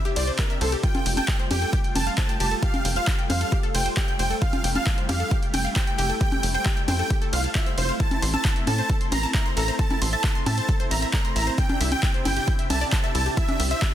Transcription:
Already playing: C3 C4 D4 E4 G4
0.05 G4, closed hi-hat
0.16 C2 C5 D5, open hi-hat, ride
0.27 C5, closed hi-hat
0.39 E4 A#4, kick, clap, closed hi-hat, ride
0.50 E5, closed hi-hat
0.61 C2 A4 C5, open hi-hat, ride
0.72 G4, closed hi-hat
0.83 G3 A3 F4 G5, kick, closed hi-hat, ride
0.95 F4, closed hi-hat, high conga
1.06 F1 G5, open hi-hat, ride
1.17 G5 A5, closed hi-hat, high conga
1.28 kick, clap, closed hi-hat, ride
1.39 C5, closed hi-hat
1.51 F2 G4 G5, open hi-hat, ride, high conga
1.62 A4, closed hi-hat
1.73 G4, kick, closed hi-hat, ride
1.84 G5, closed hi-hat
1.95 F1 G5 A5, open hi-hat, ride, high conga
2.07 F5, closed hi-hat
2.18 C5 A5, kick, clap, closed hi-hat, ride
2.29 G5, closed hi-hat
2.40 F1 G4 A5, open hi-hat, ride
2.51 A4, closed hi-hat
2.63 G4 F5, kick, closed hi-hat, ride
2.74 G5, closed hi-hat, high conga
2.85 F1 G5, open hi-hat, ride
2.96 C5 F5, closed hi-hat
3.07 G4, kick, clap, closed hi-hat, ride
3.18 G5, closed hi-hat
3.30 F2 C5 F5, open hi-hat, ride, high conga
3.41 A4, closed hi-hat
3.52 G4, kick, closed hi-hat, ride
3.63 A4, closed hi-hat
3.74 F1 C5 G5, open hi-hat, ride
3.86 C5, closed hi-hat
3.97 G4 G5, kick, clap, closed hi-hat
4.08 G5, closed hi-hat
4.19 F1 C5 G5, open hi-hat, ride
4.30 A4, closed hi-hat
4.42 E4 F4 F5, kick, closed hi-hat, ride
4.53 F4, closed hi-hat, high conga
4.64 F1 G5, open hi-hat, ride
4.75 F5 A5, closed hi-hat, high conga
4.87 kick, clap, closed hi-hat, ride
4.98 C5, closed hi-hat
5.09 F2 G4 F5, open hi-hat, ride, high conga
5.20 A4, closed hi-hat
5.31 G4, kick, closed hi-hat, ride
5.42 G5, closed hi-hat
5.54 F1 G5, open hi-hat, ride, high conga
5.65 F5, closed hi-hat
5.76 C5 G5, kick, clap, closed hi-hat, ride
5.87 G5, closed hi-hat
5.98 F1 G4 G5, open hi-hat, ride
6.09 A4, closed hi-hat
6.21 G4 G5, kick, closed hi-hat, ride
6.32 G5, closed hi-hat, high conga
6.43 F1 G5, open hi-hat, ride
6.54 C5 G5, closed hi-hat
6.66 G4, kick, clap, closed hi-hat, ride
6.77 G5, closed hi-hat
6.88 F2 C5 G5, open hi-hat, ride, high conga
6.99 A4, closed hi-hat
7.10 G4, kick, closed hi-hat, ride
7.22 A4, closed hi-hat
7.33 C2 C5 F5, open hi-hat, ride
7.44 A5, closed hi-hat
7.55 F4 E5, kick, clap, closed hi-hat, ride
7.66 C5, closed hi-hat
7.78 F1 F4 C5, open hi-hat, ride
7.89 F5, closed hi-hat
8.00 C4 E4 A5, kick, closed hi-hat, ride
8.11 E4, closed hi-hat, high conga
8.22 A1 C6, open hi-hat, ride
8.33 A5 E6, closed hi-hat, high conga
8.45 E6, kick, clap, closed hi-hat
8.56 E5, closed hi-hat
8.67 A2 A4 A5, open hi-hat, ride, high conga
8.78 C5, closed hi-hat
8.90 A4, kick, closed hi-hat, ride
9.01 C6, closed hi-hat
9.12 A1 A#5 C6, open hi-hat, ride, high conga
9.23 A5, closed hi-hat
9.34 E5 A#5, kick, clap, closed hi-hat, ride
9.46 C6, closed hi-hat
9.57 A1 A4 A#5, open hi-hat, ride
9.68 C5, closed hi-hat
9.79 A4 A5, kick, closed hi-hat, ride
9.90 E4, closed hi-hat, high conga
10.01 A1 C6, open hi-hat, ride
10.13 E5 A5, closed hi-hat
10.24 A4, kick, clap, closed hi-hat, ride
10.35 C6, closed hi-hat
10.46 A2 E5 A5, open hi-hat, ride, high conga
10.57 C5, closed hi-hat
10.69 A4, kick, closed hi-hat, ride
10.80 C5, closed hi-hat
10.91 A1 E5 A#5, open hi-hat, ride
11.02 E5, closed hi-hat
11.13 A4 A#5, kick, clap, closed hi-hat, ride
11.25 C6, closed hi-hat
11.36 A1 E5 A#5, open hi-hat, ride
11.47 C5, closed hi-hat
11.58 C3 D4 G4 G5, kick, closed hi-hat, ride
11.69 D4, closed hi-hat, high conga
11.80 C2 E5, open hi-hat, ride
11.92 G5, closed hi-hat, high conga
12.03 kick, clap, closed hi-hat, ride
12.14 C5, closed hi-hat
12.25 G1 E4 G5, open hi-hat, ride, high conga
12.37 G4, closed hi-hat
12.48 E4, kick, closed hi-hat, ride
12.59 E5, closed hi-hat
12.70 C2 E5 A5, open hi-hat, ride, high conga
12.81 D5, closed hi-hat
12.92 C5 A5, kick, clap, closed hi-hat, ride
13.04 E5, closed hi-hat
13.15 C2 E4 A5, open hi-hat, ride
13.26 G4, closed hi-hat
13.37 E4 E5, kick, closed hi-hat, ride
13.48 D4, closed hi-hat, high conga
13.60 C2 E5, open hi-hat, ride
13.71 C5 E5, closed hi-hat
13.82 E4, kick, clap, closed hi-hat, ride

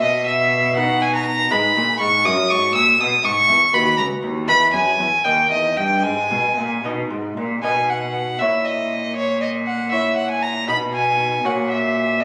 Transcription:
0.02 B2 D#5
0.26 E5
0.77 B3 D#4 F#4 F#5
1.02 G#5
1.16 A#5
1.26 A#5
1.51 G#2 G#3 B3 D#4 G#4 B5
1.76 A#2
2.00 G#2 C#6
2.24 F#2 A#3 F#4 C#5 D#6
2.50 G#2 C#6
2.74 A#2 E6
2.99 B2 D#6
3.23 G#2 C#6
3.47 E2
3.73 D#2 B3 F#4 B4 B5
3.98 C#2 A#5
4.23 D#2
4.48 E2 G#3 G#4 B4 B5
4.73 F#2 G#5
4.98 E2
5.24 D#2 A#3 D#4 D#5 G5
5.50 E2 D#5
5.76 G2 G5
6.03 G#2 G#3 G#5
6.30 B2
6.57 A#2
6.84 B2 B3 D#4 D#5
7.10 G#2
7.37 A#2
7.63 B2 B3 D#4 D#5 G#5
7.90 F#5
8.38 A#2 E4 C#5 E5
8.65 D#5
9.16 C#5
9.42 D#5
9.67 F#5
9.92 E4 C#5 E5
10.17 F#5
10.30 G#5
10.42 A#5
10.67 B2 D#4 D#5 B5
10.94 G#5
11.44 A#2 F#4 C#5 F#5
11.70 E5
12.20 B2 D#5

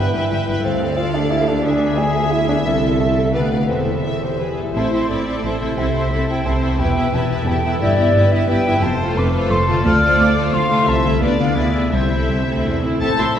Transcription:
Already playing: G2 E3 G3 B3 E4 G4 B4 E5 G5
0.13 G1 G2 D4 B4 E5 G5
0.30 G1 G2 E4 B4 E5 G5
0.47 G1 G2 G3 B4 E5 G5
0.64 D2 D3 C4 A4 D5 F5
0.80 A3
0.97 F4 A4
1.14 D4 G4
1.31 E4 A4
1.48 A3 D4
1.64 D3 D4 G#4 E5
1.83 B3
1.99 G#4
2.16 F4
2.32 E4 G#4
2.49 B3 D4
2.65 C2 C3 E4 A4
2.84 C4
3.00 A3 A4
3.17 G4
3.34 D2 D3 B3 B4 D5 F5
3.51 F4 B4
3.69 E1 E2 E3 C4 A4 C5 E5
3.87 E4
4.04 A4 E5
4.22 G4 C5
4.38 E3 G#4 B4
4.56 A2 E4 A4 E5
4.61 A3
4.66 E4
4.70 C5
4.74 A1 A2 C4 E4 A4 E5 A5
4.92 C4 E4 A4 E5 C6
5.08 A1 A2 C4 E4 A4 D5 E5 B5
5.26 C4 E4 A4 E5
5.42 A1 A2 C4 E4 A4 C5 E5 A5
5.60 C3 C4 E4 A4 E5
5.64 A3
5.69 E4
5.73 C2 E4 A4 C5
5.78 C3 C4 E5
5.94 C4 E4 A4 E5
6.11 C2 C3 C4 E4 A4 E5
6.28 C4 E4 A4 E5 G5
6.43 C2 C3 C4 E4 A4 C5 E5 A5
6.61 E2 C4 E4 A4 E5
6.65 B3
6.70 E4
6.75 B3 E4 B4
6.79 E1 E2 G4 E5 G5
6.96 B3 E4 G4 E5
7.12 E1 E2 B3 E4 G4 E5 A5
7.29 B3 E4 G4 E5
7.46 E1 E2 B3 E4 G4 A4 E5 G5
7.63 G2 B3 E4 G4 E5
7.67 B3
7.72 E4
7.76 B4 D5
7.80 G1 G2 B3 E4 G4 E5
7.97 B3 E4 G4 E5
8.14 G1 G2 B3 E4 G4 B4 E5
8.31 B3 E4 G4 E5
8.48 G1 G2 B3 E4 G4 B4 E5 G5
8.65 F2 B3 E4 G4 E5
8.69 C4 F4
8.78 A4 C5
8.82 F1 F2 A5
9.00 A3 F4 A4 C5
9.15 F1 F2 B4 D6
9.34 A3 F4 A4 C5
9.50 F1 F2 A4 C6
9.67 D3 A3 F4 A4 C5
9.71 C4
9.76 F4
9.80 D2 A4 D5
9.84 D2 A3 F4 A4 C5 F6
10.01 A3 F4 A4 C5
10.18 D2 D6
10.34 A3 F4 A4 C5
10.53 D2 F5 C6
10.70 C3 A3 F4 A4 C5
10.75 C4
10.79 E4
10.84 C2 A4 E5
10.88 C2 A5
11.04 D3 A3 E4 A4 C5
11.08 B3
11.13 F4
11.18 D2 B3 D4 F4 B4
11.22 D2 D5
11.38 D3 B3 D4 F4 B4 F5
11.43 B3
11.48 E4
11.53 D2 B3 E4 G#4
11.57 D2 E5
11.73 C3 B3 E4 G#4
11.80 C4
11.84 E4
11.89 C2 C4 E4 A4 E5
11.93 C5
12.10 C4 E4 A4
12.28 C2
12.47 D2 C4 E4 A4
12.65 C2 E2
12.83 D2 A2 C4 E4 A4
12.87 C4
12.92 E4
12.97 A4 C5
13.01 A1 A2 A3 C4 E4 A4 E5 A5
13.18 A1 A2 C4 E4 A4 E5 C6
13.36 A1 C4 E4 A4 E5

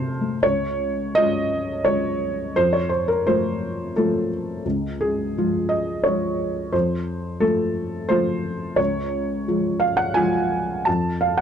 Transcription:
Already playing: F2 C3 A3 C4 F4 A4 C5 A5 C6 F6
0.21 A3
0.43 C#2 C#5
1.15 G#3 C#4 F4 D#5
1.85 G#3 C#4 F4 C#5
2.56 F2 C5
2.73 C#5
2.89 C5
3.08 A#4
3.27 F3 A3 F4 C5
3.96 F3 A3 F4 A4
4.65 C#2
5.01 G#4
5.37 F3 G#3 F4
5.69 D#5
6.04 F3 G#3 F4 C#5
6.72 F2 C5
7.40 F3 A3 F4 A4
8.09 F3 A3 F4 C5
8.76 C#2 C#5
9.48 F3 G#3 F4
9.80 F5
9.97 F#5
10.14 F3 G#3 F4 G#5
10.85 F2 A5
11.21 F5
11.38 F#5

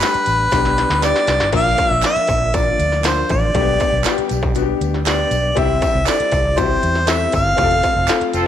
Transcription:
Already playing: G3 B3 D4 B4
0.01 A3 D4 G4, snare, clap, closed hi-hat, tambourine
0.07 B3
0.14 muted fingered electric bass stroke, closed hi-hat
0.26 A1, closed hi-hat, tambourine
0.51 B1 B3 D4 G4, kick, snare, closed hi-hat, tambourine
0.65 snare
0.78 snare, closed hi-hat
0.90 D2, snare
1.02 B3 D4 G4 D5, snare, clap, closed hi-hat, tambourine
1.16 snare
1.27 C2, snare, closed hi-hat, tambourine
1.40 G1, snare
1.52 A#1 F3 A#3 D4 F4 F5, kick, closed hi-hat, crash
1.78 kick, closed hi-hat, tambourine
1.90 A#1 E5
2.02 A#3 C4 F4 E5, snare, clap, closed hi-hat, tambourine
2.09 D4
2.16 muted fingered electric bass stroke, closed hi-hat
2.27 A#1, kick, closed hi-hat, tambourine
2.53 A#3 D4 F4 D5, kick, closed hi-hat, tambourine
2.79 D2, closed hi-hat, tambourine
2.92 snare
3.04 A#3 D4 F4 C5, snare, clap, closed hi-hat, tambourine
3.29 A1 D5, kick, closed hi-hat, tambourine
3.54 B1 G3 A3 B3 D4 G4, kick, closed hi-hat
3.61 B3
3.80 kick, closed hi-hat, tambourine
3.92 B1
4.04 B3 D4 F4, snare, clap, closed hi-hat, tambourine
4.11 G4
4.18 muted fingered electric bass stroke, closed hi-hat
4.29 B1, closed hi-hat, tambourine
4.43 kick
4.55 B3 D4 F#4, closed hi-hat, tambourine
4.62 G4
4.81 D2, closed hi-hat, tambourine
4.94 snare
5.05 B3 D4 G4 D5, snare, clap, closed hi-hat, tambourine
5.31 B1, closed hi-hat, tambourine
5.55 C2 C4 D#4 E4 G4 E5, kick, closed hi-hat, tambourine
5.62 E4
5.82 kick, closed hi-hat, tambourine
5.95 C2
6.06 C4 D4 A4 D5, snare, clap, closed hi-hat, tambourine
6.13 E4
6.20 muted fingered electric bass stroke, closed hi-hat
6.32 C2, kick, closed hi-hat, tambourine
6.57 C4 E4 F#4 C5, kick, closed hi-hat, tambourine
6.63 G4
6.83 E2, closed hi-hat, tambourine
6.95 snare
7.07 C4 E4 A4 E5, snare, clap, closed hi-hat, tambourine
7.32 G1 F5, kick, closed hi-hat, tambourine
7.57 F1 A3 C4 F4 G4, kick, closed hi-hat, tambourine
7.64 A4
7.71 closed hi-hat
7.83 kick, closed hi-hat, tambourine
7.96 F1
8.08 C4 F4 A4, snare, clap, closed hi-hat, tambourine
8.21 muted fingered electric bass stroke, closed hi-hat
8.33 F1 C4 F4 A4, closed hi-hat, tambourine

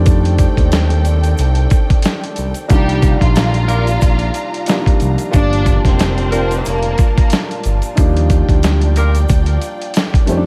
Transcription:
Already playing: F2 D#3 G3 A3 C4 D4 A4 D5 G5
0.06 kick, closed hi-hat, shaker
0.25 closed hi-hat
0.38 kick, closed hi-hat, shaker
0.57 D#2, kick, closed hi-hat
0.72 snare, closed hi-hat, shaker
0.90 closed hi-hat
1.05 closed hi-hat, shaker
1.23 closed hi-hat, shaker
1.38 C2, closed hi-hat, shaker
1.55 closed hi-hat
1.70 kick, closed hi-hat, shaker
1.90 kick, closed hi-hat
2.02 snare, closed hi-hat, shaker
2.24 closed hi-hat
2.36 C2, closed hi-hat, shaker
2.54 closed hi-hat, shaker
2.69 C2 D#3 F3 G3 A#3 F4 G4 D5 F5 A#5, kick, closed hi-hat, shaker
2.73 D4
2.89 closed hi-hat
3.02 kick, closed hi-hat, shaker
3.21 A#1 F4 F5, kick, closed hi-hat
3.36 snare, closed hi-hat, shaker
3.54 closed hi-hat
3.69 F4 G4 A#4, closed hi-hat, shaker
3.87 closed hi-hat, shaker
4.01 A#1, kick, closed hi-hat, shaker
4.19 closed hi-hat
4.34 closed hi-hat, shaker
4.54 closed hi-hat
4.66 C2 D#3 F3 G3 A#3 D4, snare, closed hi-hat, shaker
4.86 kick, closed hi-hat
5.00 C2, closed hi-hat, shaker
5.18 closed hi-hat, shaker
5.31 G1 A#2 F3 G3 A#3 D4 A#4 D5 A5, kick, closed hi-hat, shaker
5.36 D4
5.53 closed hi-hat
5.66 kick, closed hi-hat, shaker
5.85 F1 C4 C5, kick, snare, closed hi-hat
5.99 snare, closed hi-hat, shaker
6.18 closed hi-hat
6.31 D4 F4 A#4, closed hi-hat, shaker
6.51 closed hi-hat, shaker
6.65 F1 A#3 A#4, closed hi-hat, shaker
6.82 closed hi-hat
6.98 kick, closed hi-hat, shaker
7.16 A#3 A#4, kick, closed hi-hat
7.30 snare, closed hi-hat, shaker
7.51 closed hi-hat
7.64 G1, closed hi-hat, shaker
7.82 closed hi-hat, shaker
7.95 D#2 F3 G3 A#3 D#4 D5 G5, kick, closed hi-hat, shaker
8.00 D4
8.17 closed hi-hat
8.30 kick, closed hi-hat, shaker
8.49 D2, kick, closed hi-hat
8.63 snare, closed hi-hat, shaker
8.81 closed hi-hat
8.96 F4 G4 A#4, closed hi-hat, shaker
9.15 closed hi-hat, shaker
9.29 D2, kick, closed hi-hat, shaker
9.46 closed hi-hat
9.62 closed hi-hat, shaker
9.82 closed hi-hat
9.94 snare, closed hi-hat, shaker
10.14 kick, closed hi-hat
10.26 F2 D#3 G3 A3 C4 A4 G5, closed hi-hat, shaker
10.30 C#4
10.37 D4

